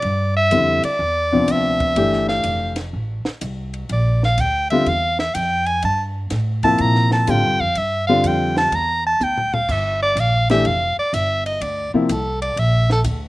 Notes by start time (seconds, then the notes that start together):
Already playing: D5
0.02 G2, ride
0.37 E5
0.51 F2 D3 G3 C4 E4, hi-hat pedal, ride
0.83 D5, muted upright bass stroke, ride
0.99 E2
1.32 C3 F3 B3 D4
1.47 D2, hi-hat pedal, ride
1.52 E5
1.80 kick, ride
1.96 G1 E3 A3 D4 G4, ride
2.13 snare
2.28 F5, snare
2.44 F1, hi-hat pedal, ride
2.76 snare, ride
2.93 A1
3.25 muted upright bass stroke, snare
3.41 C2, hi-hat pedal, ride
3.74 ride
3.89 A#1 D5, ride
4.23 F5, snare
4.38 D2 G5, hi-hat pedal, ride
4.70 D3 G3 C4 F4 E5, ride
4.86 E2 F5, ride
5.19 E5, snare
5.35 F2 G5, hi-hat pedal, ride
5.66 G#5, ride
5.82 G2 A5, ride
6.30 A2, snare, hi-hat pedal, ride
6.63 C3 F3 A#3 E4 A5, kick, ride
6.78 A#2 A#5, ride
6.95 snare
7.11 A5, snare
7.27 A2 D3 G3 C4 F4 G5, hi-hat pedal, ride
7.44 G2
7.60 F2 F5
7.75 G2 E5, ride
8.07 D3 G3 C4 F4 F5
8.24 F2 G5, hi-hat pedal, ride
8.57 A5, snare
8.71 E2 A#5, ride
9.07 A5
9.20 D2 G5, hi-hat pedal, high tom
9.37 floor tom
9.54 F5, floor tom
9.68 G1 E5, kick, crash
10.02 D5
10.15 A#1, hi-hat pedal, ride
10.20 F5
10.49 E3 A3 D4 G4 E5, snare, ride
10.64 F1 F5, ride
10.97 D5, muted upright bass stroke
11.13 G1 E5, hi-hat pedal, ride
11.46 D#5, ride
11.61 D2 D5, ride
11.93 C3 F3 A#3 E4 F4, muted upright bass stroke
12.09 C2 A4, hi-hat pedal, ride
12.42 D5, ride
12.56 A#1 E5, ride
12.90 A4, snare
13.04 D2, hi-hat pedal, ride